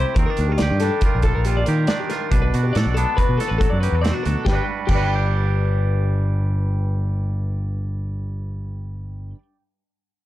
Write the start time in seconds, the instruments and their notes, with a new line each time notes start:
Already playing: clean electric guitar C3 G3 E4 G4 A4 C5
0.14 fingered electric bass D#2, clean electric guitar D#3 A#4, kick, closed hi-hat
0.18 clean electric guitar C4
0.26 clean electric guitar D4 A#4
0.37 fingered electric bass D2, closed hi-hat
0.41 clean electric guitar D4
0.48 clean electric guitar F4 G4
0.58 fingered electric bass D2, clean electric guitar D5, snare, closed hi-hat
0.62 clean electric guitar G4
0.71 fingered electric bass G2
0.80 clean electric guitar G3 A4, snare, closed hi-hat
0.84 clean electric guitar D4
1.01 clean electric guitar A#4, kick, closed hi-hat
1.05 clean electric guitar F4
1.15 fingered electric bass A#1
1.22 clean electric guitar A4, kick, closed hi-hat
1.35 fingered electric bass A#1, clean electric guitar A#4
1.45 clean electric guitar A#2 F4 G4, closed hi-hat
1.57 clean electric guitar D5
1.66 fingered electric bass D#3, clean electric guitar G4 A#4, closed hi-hat
1.87 clean electric guitar D#3 D4 D5, snare, closed hi-hat
2.00 clean electric guitar G4
2.10 clean electric guitar F4 A#4, snare, closed hi-hat
2.31 fingered electric bass B1, clean electric guitar B2 D4 B4, kick, closed hi-hat
2.42 clean electric guitar B4
2.54 fingered electric bass B2, clean electric guitar F#4, closed hi-hat
2.63 clean electric guitar G4
2.73 fingered electric bass A2, clean electric guitar A4 D5, snare, closed hi-hat
2.86 fingered electric bass B1
2.94 clean electric guitar B3 D4 A4, closed hi-hat
3.17 clean electric guitar F#4 B4, kick, closed hi-hat
3.29 fingered electric bass B2
3.37 clean electric guitar A4, snare, closed hi-hat
3.48 fingered electric bass A1, clean electric guitar B4
3.58 clean electric guitar F#3 F#4 A4, kick, closed hi-hat
3.70 fingered electric bass F#2, clean electric guitar D5
3.80 clean electric guitar G4 B4, closed hi-hat
3.92 fingered electric bass E2, clean electric guitar A4
4.01 clean electric guitar B2 C4 D5, closed hi-hat
4.06 snare
4.12 clean electric guitar D4 F#4
4.23 fingered electric bass D2, clean electric guitar F#4 A4, closed hi-hat
4.45 fingered electric bass G1, clean electric guitar G2 G4 B4, kick, snare
4.49 clean electric guitar G3 D4 D5
4.53 clean electric guitar F#4 B4 G5
4.87 fingered electric bass G1, clean electric guitar G2 G3 G4, kick, crash
4.91 clean electric guitar D4 B4 D5
4.96 clean electric guitar F#4 B4 G5
5.09 clean electric guitar D5
5.16 clean electric guitar G5